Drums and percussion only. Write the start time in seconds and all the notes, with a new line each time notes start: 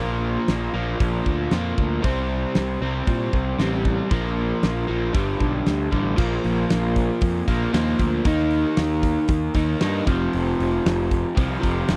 0.48 snare, open hi-hat
1.00 kick, open hi-hat
1.26 kick
1.51 snare, open hi-hat
1.78 kick
2.04 kick, open hi-hat
2.55 snare, open hi-hat
3.07 kick, open hi-hat
3.33 kick
3.59 snare, open hi-hat
3.85 kick
4.11 kick, open hi-hat
4.63 snare, open hi-hat
5.15 kick, open hi-hat
5.40 kick
5.66 snare, open hi-hat
5.92 kick
6.18 kick, crash
6.44 open hi-hat
6.70 snare, open hi-hat
6.96 kick, open hi-hat
7.21 kick, open hi-hat
7.48 kick, open hi-hat
7.74 snare, open hi-hat
7.99 kick, open hi-hat
8.25 kick, open hi-hat
8.38 snare
8.51 open hi-hat
8.77 snare, open hi-hat
9.03 kick, open hi-hat
9.28 kick, open hi-hat
9.54 kick, open hi-hat
9.81 snare, open hi-hat
10.07 kick, open hi-hat
10.33 open hi-hat
10.60 open hi-hat
10.86 snare, open hi-hat
11.11 kick, open hi-hat
11.37 kick, open hi-hat
11.63 kick, open hi-hat
11.88 snare, open hi-hat